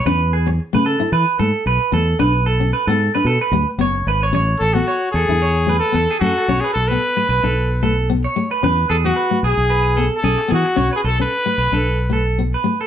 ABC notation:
X:1
M:4/4
L:1/16
Q:"Swing 16ths" 1/4=112
K:A
V:1 name="Clean electric guitar"
B2 G z2 B A2 B2 A2 B2 A2 | B2 A2 B A2 B A B2 z c2 B c | c2 A2 c2 A2 c2 B2 A G A A | c B A2 z B B A2 z A2 z c2 B |
B2 G2 B2 G2 B2 A2 G z G z | c B A2 z B B A2 z A2 z B2 A |]
V:2 name="Trumpet"
z16 | z16 | z2 A F3 G4- G A3 F2- | F G A B8 z4 z |
z2 A F3 G4- G A3 F2- | F G A B8 z4 z |]
V:3 name="Steel-string acoustic guitar"
C2 z3 A,2 E2 z A,2 z2 A,2 | D2 z C2 B,2 D2 z A,2 B,2 z2 | C2 z B,2 z2 E2 z A,2 B,2 A,2 | C2 z B,2 A,2 ^D2 z A,2 B,2 A,2 |
C2 z B,2 A,2 z3 B,2 C2 B,2 | C2 z C2 A,2 D2 z A,2 B,2 A,2 |]
V:4 name="Fingered electric bass" clef=bass
E,,4- E,, C,2 z E, z G,, z B,,, z E,,2 | B,,,4- B,,, G,,2 z B,, z D,, z F,,,2 G,,,2 | A,,,2 A,,,2 z2 E,, E,,4- E,, E,, z F,, z | B,,, z B,,,2 z2 B,,, B,,,8 z |
E,,2 E,,2 z2 B,,, B,,,4- B,,, B,,, z E, z | B,,, z B,,,2 z2 B,,, B,,,8 z |]